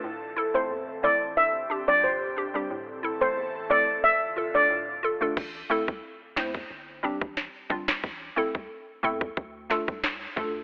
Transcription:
Already playing: A4
0.04 A2 E3 C4
0.36 E4 A4
0.54 A3 C4 E4 A4 C5
0.70 E2
1.03 A3 C4 E4 A4 D5
1.37 G2 D3 G4 E5
1.70 D4 G4
1.87 G3 C4 D4 F4 D5
2.04 D2 C5
2.36 D4 G4
2.54 G3 C4 D4 G4
2.70 A2 E3 A4
3.03 E4 A4
3.21 A3 C4 E4 A4 C5
3.37 E2
3.70 A3 C4 E4 A4 D5
4.04 D2 D3 F4 E5
4.36 F4 A4
4.54 A3 D4 F4 A4 D5
4.70 A2
5.03 F4 A4
5.21 A3 D4 F4 A4
5.37 A1, kick, crash
5.70 A3 C4 E4 A4
5.88 C2, kick
6.36 E2 A3 C4 E4 C5, snare, clap
6.55 kick
6.70 G1
7.03 G3 C4 D4 G4
7.21 A1, kick
7.37 snare
7.70 G1 G3 C4 D4 F4, kick
7.88 snare, clap
8.04 A1, kick
8.36 A3 C4 E4 A4
8.55 C2, kick
9.03 E2 A3 C4 E4 A4
9.21 kick
9.37 D2, kick
9.70 A3 D4 F4 A4, snare
9.88 C2, kick
10.04 snare, clap
10.36 D2 A3 D4 F4 A4, kick

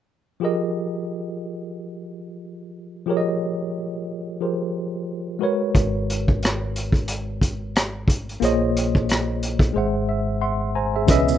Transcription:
0.40 F3 F4 G4 G#4 A#4
0.45 D#5
3.06 F3 F4 G4 G#4 A#4
3.10 C#5
3.17 D#5
4.40 F3 F4 G4 G#4 A#4 C5
5.39 G#3 F#4 A#4 B4
5.44 C#5
5.75 G#1, kick, closed hi-hat
6.10 closed hi-hat
6.28 kick
6.43 cross-stick, closed hi-hat
6.76 closed hi-hat
6.92 kick, closed hi-hat
7.08 closed hi-hat
7.41 kick, closed hi-hat
7.76 cross-stick, closed hi-hat
8.08 kick, closed hi-hat
8.29 closed hi-hat
8.40 A#1 A#3 F4 G#4 C5 C#5, closed hi-hat
8.45 D#5
8.77 closed hi-hat
8.95 kick
9.09 cross-stick, closed hi-hat
9.43 closed hi-hat
9.59 kick, closed hi-hat
9.73 G#1 G#3 G#4 C5 E5
9.78 F#5
10.09 E5
10.41 E5 F#5 C6
10.75 C5 G#5 A#5
10.96 G#4 E5
11.06 C#2 B2 C#3 E3 B3 C#4 E4 B4 D#5, kick, closed hi-hat, maracas
11.11 E5
11.28 maracas

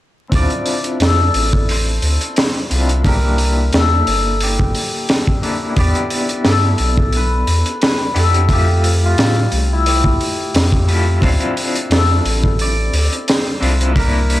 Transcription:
0.29 D2 C4 D4 E4, kick, open hi-hat
0.34 F4 D5
0.50 closed hi-hat
0.66 open hi-hat
0.84 closed hi-hat
1.00 F2 A4, snare, open hi-hat
1.34 A1, open hi-hat
1.53 kick
1.69 C5, open hi-hat
2.02 D2, open hi-hat
2.21 closed hi-hat
2.36 C5, snare, open hi-hat
2.70 C2 C4 D4 E4 F4, open hi-hat
2.89 closed hi-hat
3.03 A#3 D4 E4 A#4, kick, open hi-hat
3.08 G4
3.38 open hi-hat
3.72 E2 A4, snare, open hi-hat
4.07 G1, open hi-hat
4.41 G4, open hi-hat
4.60 kick
4.75 open hi-hat
5.09 snare, open hi-hat
5.27 kick
5.42 A#3 D4 E4 A4, open hi-hat
5.76 E2 B3 D4 E4 D5, kick, open hi-hat
5.80 G4
5.95 closed hi-hat
6.10 open hi-hat
6.29 closed hi-hat
6.45 G2 A4, snare, open hi-hat
6.78 B1, open hi-hat
6.97 kick
7.12 B4, open hi-hat
7.47 E2, open hi-hat
7.66 closed hi-hat
7.82 B4, snare, open hi-hat
8.14 F2 B3 D4 E4 G4, open hi-hat
8.19 A4
8.34 closed hi-hat
8.47 A3 F4 E5, kick, open hi-hat
8.52 G4
8.84 open hi-hat
9.05 F4
9.17 A2, snare, open hi-hat
9.52 C2, open hi-hat
9.73 E4
9.86 G4, open hi-hat
10.04 kick
10.21 open hi-hat
10.54 F2, snare, open hi-hat
10.72 kick
10.87 A3 E4 F4 G4, open hi-hat
11.21 D2 C4 D4 E4, kick, open hi-hat
11.25 F4
11.40 closed hi-hat
11.57 open hi-hat
11.76 closed hi-hat
11.90 F2 A4, snare, open hi-hat
12.25 A1, open hi-hat
12.43 kick
12.59 D5, open hi-hat
12.92 D2, open hi-hat
13.13 closed hi-hat
13.28 C5, snare, open hi-hat
13.60 C2 C4 D4 E4 F4, open hi-hat
13.81 closed hi-hat
13.93 A#3 D4 E4, kick, open hi-hat
13.98 A#4
14.30 open hi-hat

